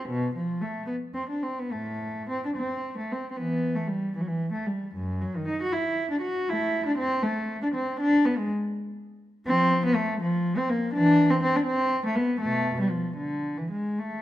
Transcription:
0.09 B2
0.36 F3
0.61 A3
0.87 B3
1.14 C4
1.29 D4
1.43 C4
1.59 B3
1.72 A2 A3
2.29 C4
2.45 D4
2.57 C4
2.98 A3
3.12 C4
3.31 C4
3.37 E3 B3
3.75 A3
3.88 G3
4.15 E3
4.21 F#3
4.27 E3
4.52 A3
4.67 G3
4.95 F#2
5.21 F#3
5.36 D#3
5.47 D#4
5.62 F#4
5.73 E4
6.11 D4
6.22 F#4
6.49 A3 E4
6.86 D4
6.98 C4
7.23 A3
7.62 D4
7.75 C4
8.00 D4
8.25 B3
8.38 G#3
9.46 F3 C4
9.86 B3
9.95 A3
10.21 F3
10.58 C4
10.70 A#3
10.93 E3 D4
11.30 C4
11.42 C4
11.56 D4
11.67 C4
12.06 A3
12.16 B3
12.41 B2 A3
12.81 G3
12.91 F3
13.17 D3
13.58 E3
13.71 G#3
13.99 A3

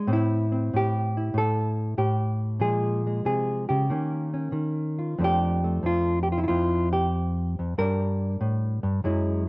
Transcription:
0.07 A2 C4
0.13 E4
0.52 C4
0.73 A2 G4
1.17 E4
1.34 A2 A4
1.98 A2 G4
2.60 A#2 F3 G#3 G#4
3.07 G#3
3.25 C3 G#4
3.69 C#3 G4
3.90 D#3 A#3 C#4
4.34 C#4
4.52 D#3
4.99 F4
5.18 F2 F3 A3 D4
5.24 G4
5.64 A3
5.83 F2 F4
6.23 G4
6.32 F4
6.38 E4
6.44 F4
6.48 F2 F4
6.93 G4
7.59 F2
7.78 G2 G3 D4 A#4
8.41 A2
8.83 G2
9.04 F#2 F#3 G#3 E4

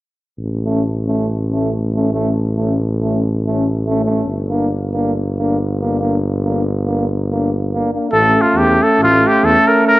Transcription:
0.38 A1
0.65 A3 C#4
1.05 A3 C#4
1.52 A3 C#4
1.94 A3 C#4
2.12 A3 C#4
2.56 A3 C#4
3.01 A3 C#4
3.46 A3 C#4
3.86 A3 C#4
4.04 A3
4.10 C#4
4.25 G1
4.49 A#3 D4
4.92 A#3 D4
5.38 A#3 D4
5.80 A#3 D4
6.00 A#3 D4
6.44 A#3 D4
6.85 A#3 D4
7.31 A#3 D4
7.73 A#3 D4
7.94 A#3 D4
8.10 A1 A3 C#4 A4
8.41 F4
8.55 E2 G4
8.83 A4
9.00 A1 F4
9.27 G4
9.43 E2 A4
9.67 A#4
9.87 A#4

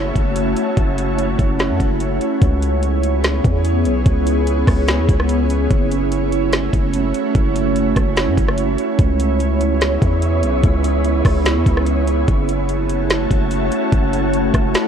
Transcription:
Already playing: F#1 A3 C#4 E4 F#4 C#5 E5 A5
0.16 F#1, kick, closed hi-hat
0.36 closed hi-hat
0.57 closed hi-hat
0.77 F#1, kick, closed hi-hat
0.98 closed hi-hat
1.18 closed hi-hat
1.39 F#1, kick, closed hi-hat
1.59 snare, closed hi-hat
1.70 F#2
1.80 F#1, kick, closed hi-hat
2.00 closed hi-hat
2.21 closed hi-hat
2.42 C#2 B3 C#4 E4 G#4 C#5, kick, closed hi-hat
2.62 closed hi-hat
2.83 closed hi-hat
3.03 closed hi-hat
3.24 snare, closed hi-hat
3.44 E2, kick, closed hi-hat
3.65 closed hi-hat
3.85 B1, closed hi-hat
4.06 C#2, kick, closed hi-hat
4.27 closed hi-hat
4.47 closed hi-hat
4.68 C#2, kick, cross-stick, open hi-hat
4.88 snare, closed hi-hat
4.99 E2
5.09 C#2, kick, closed hi-hat
5.20 cross-stick
5.29 closed hi-hat
5.50 closed hi-hat
5.70 F#1 A3 F#4 C#5, kick, closed hi-hat
5.91 closed hi-hat
6.11 closed hi-hat
6.32 closed hi-hat
6.52 snare, closed hi-hat
6.73 F#1, kick, closed hi-hat
6.93 closed hi-hat
7.14 closed hi-hat
7.35 F#1, kick, closed hi-hat
7.56 closed hi-hat
7.76 closed hi-hat
7.96 F#1, kick, cross-stick, closed hi-hat
8.17 snare, closed hi-hat
8.27 F#2
8.37 F#1, kick, closed hi-hat
8.48 cross-stick
8.58 closed hi-hat
8.78 closed hi-hat
8.99 C#2 B3 E4 G#4 C#5 B5, kick, closed hi-hat
9.20 closed hi-hat
9.40 closed hi-hat
9.61 closed hi-hat
9.81 snare, closed hi-hat
10.02 E2, kick, closed hi-hat
10.22 closed hi-hat
10.43 B1, closed hi-hat
10.63 C#2, kick, closed hi-hat
10.84 closed hi-hat
11.05 closed hi-hat
11.25 C#2, kick, cross-stick, open hi-hat
11.46 snare, closed hi-hat
11.56 E2
11.66 C#2, kick, closed hi-hat
11.77 cross-stick
11.86 closed hi-hat
12.07 closed hi-hat
12.28 F#1 A3 C#4 E4 F#4 C#5 E5 A5, kick, closed hi-hat
12.49 closed hi-hat
12.69 closed hi-hat
12.90 closed hi-hat
13.10 snare, closed hi-hat
13.31 F#1, kick, closed hi-hat
13.51 closed hi-hat
13.72 closed hi-hat
13.92 F#1, kick, closed hi-hat
14.13 closed hi-hat
14.33 closed hi-hat
14.54 F#1, kick, cross-stick, closed hi-hat
14.74 snare, closed hi-hat

